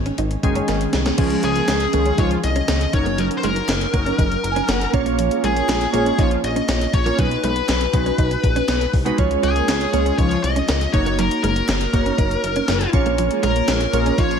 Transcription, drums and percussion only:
0.06 closed hi-hat soft
0.18 closed hi-hat medium
0.31 closed hi-hat soft
0.43 kick medium
0.43 closed hi-hat medium
0.55 closed hi-hat medium
0.68 snare medium
0.68 clap medium
0.68 closed hi-hat medium
0.81 closed hi-hat soft
0.93 snare medium
0.93 closed hi-hat medium
1.06 snare medium
1.06 closed hi-hat soft
1.18 kick loud
1.18 closed hi-hat loud
1.18 crash loud
1.30 closed hi-hat medium
1.43 closed hi-hat medium
1.56 closed hi-hat soft
1.68 snare loud
1.68 clap loud
1.68 closed hi-hat medium
1.68 tambourine medium
1.80 closed hi-hat medium
1.93 closed hi-hat medium
2.06 closed hi-hat soft
2.18 kick loud
2.18 closed hi-hat medium
2.31 closed hi-hat soft
2.44 closed hi-hat medium
2.56 closed hi-hat medium
2.68 snare loud
2.68 clap medium
2.68 closed hi-hat medium
2.68 tambourine medium
2.81 closed hi-hat soft
2.93 kick loud
2.93 closed hi-hat medium
3.06 closed hi-hat soft
3.18 closed hi-hat loud
3.31 closed hi-hat medium
3.43 closed hi-hat medium
3.56 closed hi-hat soft
3.68 snare loud
3.68 clap loud
3.68 closed hi-hat medium
3.68 tambourine medium
3.81 closed hi-hat medium
3.94 kick medium
3.94 closed hi-hat medium
4.06 closed hi-hat soft
4.18 kick loud
4.18 closed hi-hat medium
4.32 closed hi-hat soft
4.44 closed hi-hat medium
4.56 closed hi-hat medium
4.68 snare loud
4.68 clap medium
4.68 closed hi-hat medium
4.68 tambourine medium
4.81 closed hi-hat medium
4.94 kick loud
4.94 closed hi-hat medium
5.06 closed hi-hat medium
5.19 closed hi-hat loud
5.31 closed hi-hat medium
5.44 closed hi-hat medium
5.57 closed hi-hat soft
5.69 snare loud
5.69 clap loud
5.69 closed hi-hat medium
5.69 tambourine medium
5.81 closed hi-hat medium
5.94 closed hi-hat medium
6.06 closed hi-hat soft
6.18 kick loud
6.18 closed hi-hat medium
6.31 closed hi-hat soft
6.44 closed hi-hat medium
6.56 closed hi-hat medium
6.69 snare loud
6.69 clap medium
6.69 closed hi-hat medium
6.69 tambourine medium
6.81 closed hi-hat medium
6.93 kick medium
6.93 closed hi-hat medium
7.06 closed hi-hat soft
7.19 kick loud
7.19 closed hi-hat loud
7.31 closed hi-hat medium
7.44 closed hi-hat medium
7.56 closed hi-hat soft
7.69 snare loud
7.69 clap loud
7.69 closed hi-hat medium
7.69 tambourine medium
7.81 closed hi-hat medium
7.93 kick medium
7.93 closed hi-hat medium
8.06 closed hi-hat soft
8.18 kick loud
8.18 closed hi-hat medium
8.31 closed hi-hat soft
8.44 kick medium
8.44 closed hi-hat medium
8.56 closed hi-hat medium
8.68 snare loud
8.68 clap medium
8.68 closed hi-hat loud
8.68 tambourine medium
8.81 closed hi-hat soft
8.93 kick medium
8.93 open hi-hat medium
9.06 closed hi-hat soft
9.18 kick loud
9.18 closed hi-hat loud
9.31 closed hi-hat medium
9.43 closed hi-hat medium
9.56 closed hi-hat soft
9.68 snare loud
9.68 clap loud
9.68 closed hi-hat medium
9.68 tambourine medium
9.81 closed hi-hat medium
9.94 closed hi-hat medium
10.06 closed hi-hat soft
10.18 kick medium
10.18 closed hi-hat medium
10.31 closed hi-hat soft
10.44 closed hi-hat medium
10.56 closed hi-hat medium
10.68 snare loud
10.68 clap medium
10.68 closed hi-hat medium
10.68 tambourine medium
10.81 closed hi-hat soft
10.94 kick loud
10.94 closed hi-hat medium
11.06 closed hi-hat medium
11.19 closed hi-hat loud
11.31 closed hi-hat medium
11.44 closed hi-hat medium
11.56 closed hi-hat soft
11.68 snare loud
11.68 clap loud
11.68 closed hi-hat medium
11.68 tambourine medium
11.81 closed hi-hat medium
11.93 kick medium
11.93 closed hi-hat medium
12.06 closed hi-hat soft
12.18 kick medium
12.18 closed hi-hat medium
12.31 closed hi-hat soft
12.44 closed hi-hat medium
12.56 closed hi-hat medium
12.68 snare loud
12.68 clap medium
12.68 closed hi-hat medium
12.68 tambourine medium
12.81 closed hi-hat medium
12.93 kick loud
12.93 closed hi-hat medium
13.06 closed hi-hat soft
13.18 closed hi-hat loud
13.31 closed hi-hat medium
13.43 closed hi-hat medium
13.56 closed hi-hat soft
13.68 snare loud
13.68 clap loud
13.68 closed hi-hat medium
13.68 tambourine medium
13.81 closed hi-hat medium
13.93 closed hi-hat medium
14.06 closed hi-hat soft
14.18 kick loud
14.18 closed hi-hat medium
14.31 closed hi-hat soft

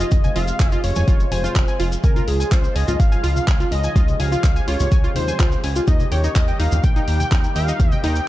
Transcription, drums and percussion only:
0.00 closed hi-hat soft
0.00 maracas medium
0.11 kick loud
0.11 closed hi-hat medium
0.11 low conga loud
0.11 maracas medium
0.24 closed hi-hat soft
0.24 high conga loud
0.24 maracas soft
0.36 open hi-hat loud
0.36 high bongo medium
0.48 closed hi-hat soft
0.48 maracas medium
0.60 kick loud
0.60 clap loud
0.60 closed hi-hat medium
0.60 maracas medium
0.72 closed hi-hat soft
0.72 maracas soft
0.84 open hi-hat loud
0.96 open hi-hat medium
0.96 low conga medium
0.96 maracas medium
1.08 kick loud
1.08 closed hi-hat medium
1.08 maracas medium
1.20 closed hi-hat soft
1.20 maracas soft
1.31 open hi-hat loud
1.31 high conga medium
1.43 closed hi-hat soft
1.43 high bongo medium
1.43 maracas medium
1.56 kick loud
1.56 clap loud
1.56 closed hi-hat medium
1.56 maracas medium
1.68 closed hi-hat soft
1.68 maracas soft
1.80 open hi-hat loud
1.92 closed hi-hat soft
1.92 maracas medium
2.04 kick loud
2.04 closed hi-hat medium
2.04 low conga medium
2.04 maracas medium
2.16 closed hi-hat soft
2.16 high conga medium
2.16 maracas soft
2.27 open hi-hat loud
2.27 high bongo medium
2.40 closed hi-hat soft
2.40 maracas medium
2.52 kick loud
2.52 clap loud
2.52 closed hi-hat medium
2.52 maracas medium
2.64 closed hi-hat soft
2.64 maracas soft
2.76 open hi-hat loud
2.88 closed hi-hat soft
2.88 low conga loud
2.88 maracas medium
3.00 kick loud
3.00 closed hi-hat medium
3.00 maracas medium
3.12 closed hi-hat soft
3.12 maracas soft
3.24 open hi-hat loud
3.36 closed hi-hat soft
3.36 high conga medium
3.36 maracas medium
3.48 kick loud
3.48 clap loud
3.48 open hi-hat medium
3.48 maracas medium
3.60 closed hi-hat soft
3.60 maracas soft
3.71 open hi-hat loud
3.71 high bongo medium
3.84 closed hi-hat soft
3.84 maracas medium
3.95 kick loud
3.95 closed hi-hat medium
3.95 low conga medium
3.95 maracas medium
4.08 closed hi-hat soft
4.08 high conga medium
4.08 maracas soft
4.20 open hi-hat loud
4.20 high bongo medium
4.32 closed hi-hat soft
4.32 maracas medium
4.44 kick loud
4.44 clap loud
4.44 closed hi-hat medium
4.44 maracas medium
4.56 closed hi-hat soft
4.56 maracas soft
4.68 open hi-hat loud
4.80 open hi-hat medium
4.80 low conga medium
4.80 maracas medium
4.92 kick loud
4.92 closed hi-hat medium
4.92 maracas medium
5.04 closed hi-hat soft
5.04 maracas soft
5.15 open hi-hat loud
5.15 high conga medium
5.28 closed hi-hat soft
5.28 high bongo medium
5.28 maracas medium
5.40 kick loud
5.40 clap loud
5.40 closed hi-hat medium
5.40 maracas medium
5.52 closed hi-hat soft
5.52 maracas soft
5.64 open hi-hat loud
5.76 closed hi-hat soft
5.76 maracas medium
5.87 kick loud
5.87 closed hi-hat medium
5.87 low conga medium
5.87 maracas medium
6.00 closed hi-hat soft
6.00 high conga loud
6.00 maracas soft
6.11 open hi-hat loud
6.11 high bongo medium
6.24 closed hi-hat soft
6.24 maracas medium
6.36 kick loud
6.36 clap loud
6.36 closed hi-hat medium
6.36 maracas medium
6.48 closed hi-hat soft
6.48 maracas soft
6.60 open hi-hat loud
6.72 closed hi-hat soft
6.72 low conga medium
6.72 maracas medium
6.84 kick loud
6.84 closed hi-hat medium
6.84 maracas medium
6.96 closed hi-hat soft
6.96 maracas soft
7.08 open hi-hat loud
7.20 closed hi-hat soft
7.20 high conga medium
7.20 maracas medium
7.32 kick loud
7.32 clap loud
7.32 open hi-hat medium
7.32 maracas medium
7.44 closed hi-hat soft
7.44 maracas soft
7.55 open hi-hat loud
7.55 high bongo medium
7.68 closed hi-hat soft
7.68 maracas medium
7.80 kick loud
7.80 closed hi-hat medium
7.80 low conga medium
7.80 maracas medium
7.92 closed hi-hat soft
7.92 high conga medium
7.92 maracas soft
8.03 open hi-hat loud
8.03 high bongo medium
8.16 closed hi-hat soft
8.16 maracas medium

